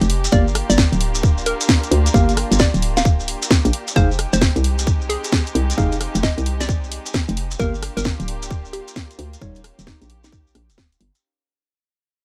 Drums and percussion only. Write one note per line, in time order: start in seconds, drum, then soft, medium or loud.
0.02 closed hi-hat medium
0.02 shekere soft
0.10 open hi-hat loud
0.24 closed hi-hat medium
0.24 shekere medium
0.32 kick loud
0.32 cross-stick soft
0.32 shekere medium
0.48 shekere soft
0.55 cross-stick medium
0.55 open hi-hat loud
0.70 closed hi-hat medium
0.70 shekere medium
0.78 kick loud
0.78 snare loud
0.78 shekere medium
0.93 closed hi-hat soft
0.93 shekere soft
1.01 open hi-hat loud
1.15 closed hi-hat medium
1.15 shekere medium
1.23 kick loud
1.23 shekere medium
1.38 shekere soft
1.46 open hi-hat loud
1.61 closed hi-hat medium
1.61 shekere medium
1.69 kick loud
1.69 snare loud
1.69 shekere medium
1.83 closed hi-hat medium
1.83 shekere soft
1.92 open hi-hat loud
2.06 closed hi-hat medium
2.06 shekere medium
2.14 kick loud
2.14 cross-stick soft
2.14 shekere medium
2.29 closed hi-hat soft
2.29 shekere soft
2.37 cross-stick medium
2.37 open hi-hat loud
2.52 closed hi-hat medium
2.52 shekere medium
2.59 kick loud
2.59 snare loud
2.59 shekere medium
2.74 closed hi-hat soft
2.74 shekere soft
2.82 open hi-hat loud
2.97 snare medium
2.97 closed hi-hat medium
2.97 shekere medium
3.05 kick loud
3.05 shekere medium
3.20 shekere soft
3.28 open hi-hat loud
3.42 closed hi-hat medium
3.42 shekere medium
3.50 kick loud
3.50 snare loud
3.50 shekere medium
3.65 closed hi-hat medium
3.65 shekere soft
3.73 open hi-hat loud
3.88 closed hi-hat medium
3.88 shekere medium
3.96 kick loud
3.96 cross-stick soft
3.96 shekere medium
4.11 shekere soft
4.19 cross-stick medium
4.19 open hi-hat loud
4.33 closed hi-hat medium
4.33 shekere medium
4.41 kick loud
4.41 snare loud
4.41 shekere medium
4.56 closed hi-hat soft
4.56 shekere soft
4.64 open hi-hat loud
4.79 closed hi-hat medium
4.79 shekere medium
4.87 kick loud
4.87 shekere medium
5.01 shekere soft
5.10 open hi-hat loud
5.24 closed hi-hat medium
5.24 shekere medium
5.32 kick loud
5.32 snare loud
5.32 shekere medium
5.46 closed hi-hat medium
5.46 shekere soft
5.55 open hi-hat loud
5.70 closed hi-hat medium
5.70 shekere medium
5.78 kick loud
5.78 cross-stick soft
5.78 shekere medium
5.92 closed hi-hat soft
5.92 shekere soft
6.01 cross-stick medium
6.01 open hi-hat loud
6.15 closed hi-hat medium
6.15 shekere medium
6.23 kick loud
6.23 snare loud
6.23 shekere medium
6.38 closed hi-hat soft
6.38 shekere soft
6.46 open hi-hat loud
6.61 snare medium
6.61 closed hi-hat medium
6.61 shekere medium
6.69 kick loud
6.69 shekere medium
6.84 shekere soft
6.92 open hi-hat loud
7.06 closed hi-hat medium
7.06 shekere medium
7.14 kick loud
7.14 snare loud
7.14 shekere medium
7.28 closed hi-hat medium
7.28 shekere soft
7.37 open hi-hat loud
7.51 closed hi-hat medium
7.51 shekere medium
7.59 kick loud
7.59 cross-stick soft
7.59 shekere medium
7.74 shekere soft
7.83 cross-stick medium
7.83 open hi-hat loud
7.97 closed hi-hat medium
7.97 shekere medium
8.05 kick loud
8.05 snare loud
8.05 shekere medium
8.20 closed hi-hat soft
8.20 shekere soft
8.28 open hi-hat loud
8.43 closed hi-hat medium
8.43 shekere medium
8.51 kick loud
8.51 shekere medium
8.65 shekere soft
8.73 open hi-hat loud
8.88 closed hi-hat medium
8.88 shekere medium
8.96 kick loud
8.96 snare loud
8.96 shekere medium
9.11 closed hi-hat medium
9.11 shekere soft
9.19 open hi-hat loud
9.33 closed hi-hat medium
9.33 shekere medium
9.41 kick loud
9.41 cross-stick soft
9.41 shekere medium
9.55 closed hi-hat soft
9.55 shekere soft
9.64 cross-stick medium
9.64 open hi-hat loud
9.79 closed hi-hat medium
9.79 shekere medium
9.87 kick loud
9.87 snare loud
10.02 closed hi-hat soft
10.02 shekere soft
10.10 open hi-hat loud
10.24 snare medium
10.24 closed hi-hat medium
10.24 shekere medium
10.32 kick loud
10.32 shekere medium
10.47 shekere soft
10.55 cross-stick medium
10.55 open hi-hat loud
10.70 closed hi-hat medium
10.70 shekere medium
10.78 kick loud
10.78 snare loud
10.78 shekere medium
10.92 closed hi-hat medium
10.92 shekere soft
11.01 open hi-hat loud
11.15 closed hi-hat medium
11.15 shekere medium